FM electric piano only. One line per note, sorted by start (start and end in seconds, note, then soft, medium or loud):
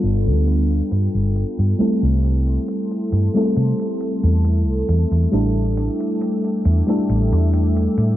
0.00 1.78 G3 medium
0.00 1.81 B3 medium
0.00 1.82 D4 medium
0.00 1.82 F4 medium
0.00 1.81 A4 medium
1.78 3.29 G3 medium
1.78 3.30 A3 medium
1.78 3.30 C4 medium
1.78 3.30 E4 medium
1.78 3.31 A4 medium
3.34 5.27 G3 medium
3.34 5.28 A3 medium
3.34 5.28 C4 medium
3.34 5.28 E4 medium
3.34 5.29 A4 loud
5.32 6.82 G3 medium
5.32 6.82 A3 medium
5.32 6.83 D4 medium
5.32 6.83 E4 medium
5.32 6.84 A4 medium
6.87 8.17 G3 medium
6.87 8.17 A3 medium
6.87 8.17 D4 medium
6.87 8.17 E4 medium
6.87 8.17 A4 loud